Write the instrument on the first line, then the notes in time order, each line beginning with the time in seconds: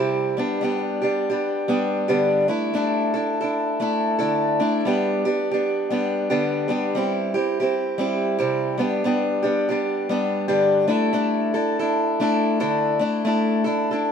steel-string acoustic guitar
Already playing: G3 C4 E4 G4
0.00 C3
0.37 G3 B3 D4 G4
0.61 G3 B3 D4 G4
1.02 G3 B3 D4 G4
1.30 G3 B3 D4 G4
1.68 G3 B3 D4 G4
2.08 G2 D3 G3 B3 D4 G4
2.48 A3 D4 E4 A4
2.74 A3 D4 E4 A4
3.14 D4 E4 A4
3.41 D4 E4 A4
3.80 A3 D4 E4 A4
4.19 D3 A3 D4 E4 A4
4.60 A3 D4 E4 A4
4.85 G3 B3 D4 G4
5.25 B3 D4 G4
5.51 B3 D4 G4
5.90 G3 B3 D4 G4
6.30 D3 G3 B3 D4 G4
6.68 G3 B3 D4 G4
6.95 G3 C4 E4 G4
7.34 C4 E4 G4
7.60 C4 E4 G4
7.98 G3 C4 E4 G4
8.38 C3 G3 C4 E4 G4
8.78 G3 B3 D4 G4
9.04 G3 B3 D4 G4
9.43 G3 B3 D4 G4
9.69 G3 B3 D4 G4
10.09 G3 B3 D4 G4
10.48 G2 D3 G3 B3 D4 G4
10.87 A3 D4 E4 A4
11.13 A3 D4 E4 A4
11.54 D4 E4 A4
11.79 D4 E4 A4
12.20 A3 D4 E4 A4
12.60 D3 A3 D4 E4 A4
12.99 A3 D4 E4 A4
13.25 A3 D4 E4 A4
13.64 D4 E4 A4
13.91 D4 E4 A4